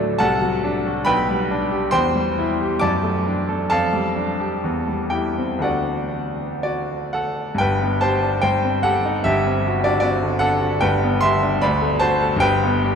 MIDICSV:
0, 0, Header, 1, 2, 480
1, 0, Start_track
1, 0, Key_signature, 1, "major"
1, 0, Tempo, 873362
1, 120, Time_signature, 2, 2, 24, 8
1, 2033, Tempo, 934579
1, 2513, Tempo, 1008403
1, 3473, Tempo, 961538
1, 3953, Tempo, 833333
1, 4913, Tempo, 791557
1, 7140, End_track
2, 0, Start_track
2, 0, Title_t, "Grand piano"
2, 0, Program_c, 0, 0
2, 0, Control_c, 0, 64, 127
2, 0, Note_on_c, 0, 38, 57
2, 0, Note_on_c, 0, 45, 43
2, 0, Note_on_c, 0, 54, 51
2, 0, Note_on_c, 0, 57, 50
2, 0, Note_on_c, 0, 62, 66
2, 0, Note_on_c, 0, 66, 66
2, 0, Note_on_c, 0, 69, 62
2, 0, Note_on_c, 0, 74, 82
2, 0, Note_on_c, 0, 78, 87
2, 67, Note_off_c, 0, 54, 0
2, 90, Note_off_c, 0, 62, 0
2, 90, Note_off_c, 0, 69, 0
2, 93, Note_off_c, 0, 38, 0
2, 102, Note_on_c, 0, 81, 95
2, 108, Note_off_c, 0, 74, 0
2, 108, Note_off_c, 0, 78, 0
2, 108, Note_on_c, 0, 78, 75
2, 110, Note_on_c, 0, 69, 72
2, 111, Note_on_c, 0, 36, 64
2, 116, Note_off_c, 0, 57, 0
2, 131, Control_c, 0, 64, 0
2, 133, Note_off_c, 0, 45, 0
2, 135, Note_off_c, 0, 66, 0
2, 229, Note_on_c, 0, 54, 51
2, 232, Control_c, 0, 64, 127
2, 352, Note_on_c, 0, 62, 57
2, 421, Note_off_c, 0, 54, 0
2, 475, Note_on_c, 0, 66, 57
2, 540, Note_off_c, 0, 62, 0
2, 562, Note_off_c, 0, 78, 0
2, 563, Note_off_c, 0, 69, 0
2, 571, Note_off_c, 0, 36, 0
2, 575, Note_on_c, 0, 83, 95
2, 580, Note_off_c, 0, 81, 0
2, 583, Note_on_c, 0, 79, 76
2, 585, Note_on_c, 0, 71, 75
2, 587, Note_on_c, 0, 35, 61
2, 590, Note_off_c, 0, 66, 0
2, 599, Control_c, 0, 64, 0
2, 700, Control_c, 0, 64, 127
2, 708, Note_on_c, 0, 55, 49
2, 830, Note_on_c, 0, 62, 55
2, 897, Note_off_c, 0, 55, 0
2, 943, Note_on_c, 0, 67, 50
2, 1018, Note_off_c, 0, 62, 0
2, 1038, Note_off_c, 0, 79, 0
2, 1039, Note_off_c, 0, 71, 0
2, 1048, Note_off_c, 0, 35, 0
2, 1050, Note_on_c, 0, 84, 104
2, 1056, Note_off_c, 0, 83, 0
2, 1057, Note_on_c, 0, 72, 78
2, 1057, Note_on_c, 0, 79, 78
2, 1059, Note_on_c, 0, 40, 62
2, 1063, Note_off_c, 0, 67, 0
2, 1073, Control_c, 0, 64, 0
2, 1180, Control_c, 0, 64, 127
2, 1185, Note_on_c, 0, 55, 48
2, 1311, Note_on_c, 0, 64, 52
2, 1380, Note_off_c, 0, 55, 0
2, 1436, Note_on_c, 0, 67, 54
2, 1503, Note_off_c, 0, 64, 0
2, 1524, Note_off_c, 0, 72, 0
2, 1524, Note_off_c, 0, 79, 0
2, 1532, Note_off_c, 0, 40, 0
2, 1536, Note_on_c, 0, 86, 94
2, 1543, Note_off_c, 0, 84, 0
2, 1544, Note_on_c, 0, 81, 72
2, 1547, Note_on_c, 0, 74, 67
2, 1549, Note_on_c, 0, 42, 61
2, 1553, Note_off_c, 0, 67, 0
2, 1559, Control_c, 0, 64, 0
2, 1660, Control_c, 0, 64, 127
2, 1667, Note_on_c, 0, 57, 45
2, 1796, Note_on_c, 0, 62, 51
2, 1860, Note_off_c, 0, 57, 0
2, 1916, Note_on_c, 0, 69, 48
2, 1987, Note_off_c, 0, 62, 0
2, 2008, Note_off_c, 0, 81, 0
2, 2010, Note_off_c, 0, 74, 0
2, 2018, Note_off_c, 0, 42, 0
2, 2026, Note_off_c, 0, 86, 0
2, 2028, Note_off_c, 0, 69, 0
2, 2032, Note_on_c, 0, 81, 95
2, 2036, Note_on_c, 0, 69, 76
2, 2038, Note_on_c, 0, 77, 74
2, 2041, Control_c, 0, 64, 0
2, 2042, Note_on_c, 0, 41, 57
2, 2149, Control_c, 0, 64, 127
2, 2153, Note_on_c, 0, 55, 43
2, 2268, Note_on_c, 0, 62, 46
2, 2343, Note_off_c, 0, 55, 0
2, 2394, Note_on_c, 0, 67, 45
2, 2463, Note_off_c, 0, 62, 0
2, 2504, Note_off_c, 0, 41, 0
2, 2515, Note_off_c, 0, 67, 0
2, 2516, Note_on_c, 0, 40, 52
2, 2521, Control_c, 0, 64, 0
2, 2625, Control_c, 0, 64, 127
2, 2630, Note_on_c, 0, 55, 39
2, 2727, Note_off_c, 0, 69, 0
2, 2728, Note_off_c, 0, 77, 0
2, 2735, Note_on_c, 0, 79, 65
2, 2740, Note_on_c, 0, 67, 45
2, 2744, Note_off_c, 0, 81, 0
2, 2746, Note_on_c, 0, 64, 40
2, 2816, Note_off_c, 0, 55, 0
2, 2870, Note_on_c, 0, 60, 37
2, 2936, Note_off_c, 0, 64, 0
2, 2964, Note_off_c, 0, 67, 0
2, 2965, Note_on_c, 0, 38, 46
2, 2971, Note_off_c, 0, 40, 0
2, 2975, Note_on_c, 0, 57, 35
2, 2979, Note_off_c, 0, 79, 0
2, 2980, Note_on_c, 0, 62, 36
2, 2982, Note_on_c, 0, 78, 64
2, 2987, Note_off_c, 0, 60, 0
2, 2987, Note_on_c, 0, 66, 48
2, 2991, Note_on_c, 0, 74, 48
2, 2994, Control_c, 0, 64, 0
2, 3082, Control_c, 0, 64, 127
2, 3457, Note_off_c, 0, 74, 0
2, 3463, Note_off_c, 0, 66, 0
2, 3464, Note_on_c, 0, 74, 66
2, 3470, Note_on_c, 0, 66, 48
2, 3704, Note_off_c, 0, 78, 0
2, 3706, Note_off_c, 0, 66, 0
2, 3712, Note_on_c, 0, 78, 69
2, 3719, Note_on_c, 0, 69, 55
2, 3720, Note_off_c, 0, 74, 0
2, 3920, Note_on_c, 0, 43, 58
2, 3923, Note_off_c, 0, 38, 0
2, 3928, Note_off_c, 0, 57, 0
2, 3931, Note_off_c, 0, 62, 0
2, 3933, Note_off_c, 0, 69, 0
2, 3939, Note_on_c, 0, 79, 89
2, 3946, Note_off_c, 0, 78, 0
2, 3948, Note_on_c, 0, 31, 58
2, 3950, Note_on_c, 0, 71, 66
2, 3961, Control_c, 0, 64, 0
2, 4064, Control_c, 0, 64, 127
2, 4072, Note_on_c, 0, 59, 45
2, 4173, Note_off_c, 0, 71, 0
2, 4181, Note_on_c, 0, 81, 87
2, 4184, Note_off_c, 0, 79, 0
2, 4187, Note_on_c, 0, 67, 51
2, 4187, Note_on_c, 0, 72, 69
2, 4263, Note_off_c, 0, 59, 0
2, 4307, Note_on_c, 0, 62, 47
2, 4381, Note_off_c, 0, 67, 0
2, 4397, Note_off_c, 0, 43, 0
2, 4411, Note_off_c, 0, 72, 0
2, 4414, Note_off_c, 0, 31, 0
2, 4416, Note_on_c, 0, 79, 91
2, 4423, Note_on_c, 0, 72, 66
2, 4424, Note_on_c, 0, 43, 57
2, 4426, Note_off_c, 0, 81, 0
2, 4429, Note_off_c, 0, 62, 0
2, 4439, Control_c, 0, 64, 0
2, 4526, Control_c, 0, 64, 127
2, 4547, Note_on_c, 0, 60, 46
2, 4651, Note_off_c, 0, 72, 0
2, 4654, Note_on_c, 0, 78, 89
2, 4661, Note_on_c, 0, 67, 52
2, 4661, Note_on_c, 0, 69, 65
2, 4664, Note_off_c, 0, 79, 0
2, 4743, Note_off_c, 0, 60, 0
2, 4782, Note_on_c, 0, 63, 46
2, 4859, Note_off_c, 0, 67, 0
2, 4890, Note_off_c, 0, 69, 0
2, 4890, Note_on_c, 0, 76, 87
2, 4893, Note_off_c, 0, 43, 0
2, 4895, Note_on_c, 0, 31, 57
2, 4898, Note_on_c, 0, 67, 68
2, 4902, Note_on_c, 0, 43, 61
2, 4904, Note_off_c, 0, 78, 0
2, 4907, Note_off_c, 0, 63, 0
2, 4924, Control_c, 0, 64, 0
2, 5028, Note_on_c, 0, 60, 47
2, 5031, Control_c, 0, 64, 127
2, 5153, Note_on_c, 0, 66, 52
2, 5223, Note_off_c, 0, 60, 0
2, 5242, Note_off_c, 0, 67, 0
2, 5249, Note_off_c, 0, 66, 0
2, 5254, Note_on_c, 0, 74, 83
2, 5258, Note_on_c, 0, 66, 65
2, 5263, Note_off_c, 0, 76, 0
2, 5263, Note_on_c, 0, 62, 53
2, 5341, Note_off_c, 0, 74, 0
2, 5350, Note_on_c, 0, 74, 83
2, 5353, Note_off_c, 0, 66, 0
2, 5362, Note_on_c, 0, 66, 65
2, 5367, Note_on_c, 0, 60, 48
2, 5452, Note_off_c, 0, 62, 0
2, 5483, Note_on_c, 0, 50, 44
2, 5563, Note_off_c, 0, 60, 0
2, 5588, Note_on_c, 0, 78, 97
2, 5591, Note_off_c, 0, 66, 0
2, 5595, Note_on_c, 0, 69, 71
2, 5598, Note_on_c, 0, 62, 54
2, 5602, Note_off_c, 0, 74, 0
2, 5682, Note_off_c, 0, 50, 0
2, 5720, Note_on_c, 0, 66, 49
2, 5801, Note_off_c, 0, 62, 0
2, 5827, Note_off_c, 0, 31, 0
2, 5830, Note_off_c, 0, 69, 0
2, 5831, Note_off_c, 0, 43, 0
2, 5839, Note_on_c, 0, 79, 94
2, 5844, Note_off_c, 0, 78, 0
2, 5845, Note_on_c, 0, 31, 63
2, 5846, Note_on_c, 0, 71, 73
2, 5850, Note_off_c, 0, 66, 0
2, 5850, Note_on_c, 0, 43, 62
2, 5872, Control_c, 0, 64, 0
2, 5963, Control_c, 0, 64, 127
2, 5975, Note_on_c, 0, 59, 51
2, 6078, Note_off_c, 0, 71, 0
2, 6082, Note_on_c, 0, 84, 107
2, 6090, Note_on_c, 0, 67, 56
2, 6091, Note_on_c, 0, 76, 75
2, 6092, Note_off_c, 0, 79, 0
2, 6172, Note_off_c, 0, 59, 0
2, 6216, Note_on_c, 0, 62, 58
2, 6290, Note_off_c, 0, 67, 0
2, 6321, Note_off_c, 0, 76, 0
2, 6322, Note_off_c, 0, 31, 0
2, 6324, Note_off_c, 0, 43, 0
2, 6330, Note_on_c, 0, 83, 90
2, 6333, Note_on_c, 0, 74, 68
2, 6334, Note_off_c, 0, 84, 0
2, 6339, Note_on_c, 0, 38, 69
2, 6341, Note_off_c, 0, 62, 0
2, 6355, Control_c, 0, 64, 0
2, 6433, Control_c, 0, 64, 127
2, 6452, Note_on_c, 0, 57, 55
2, 6560, Note_on_c, 0, 81, 99
2, 6563, Note_off_c, 0, 74, 0
2, 6565, Note_on_c, 0, 72, 78
2, 6570, Note_on_c, 0, 66, 64
2, 6579, Note_off_c, 0, 83, 0
2, 6651, Note_off_c, 0, 57, 0
2, 6700, Note_on_c, 0, 69, 60
2, 6771, Note_off_c, 0, 66, 0
2, 6784, Note_on_c, 0, 31, 76
2, 6800, Note_off_c, 0, 72, 0
2, 6807, Note_on_c, 0, 79, 107
2, 6811, Note_off_c, 0, 38, 0
2, 6815, Note_off_c, 0, 81, 0
2, 6817, Note_on_c, 0, 71, 82
2, 6825, Note_off_c, 0, 69, 0
2, 6838, Control_c, 0, 64, 0
2, 6922, Control_c, 0, 64, 127
2, 6945, Note_on_c, 0, 59, 54
2, 7073, Note_on_c, 0, 67, 61
2, 7140, Note_off_c, 0, 31, 0
2, 7140, Note_off_c, 0, 59, 0
2, 7140, Note_off_c, 0, 67, 0
2, 7140, Note_off_c, 0, 71, 0
2, 7140, Note_off_c, 0, 79, 0
2, 7140, End_track
0, 0, End_of_file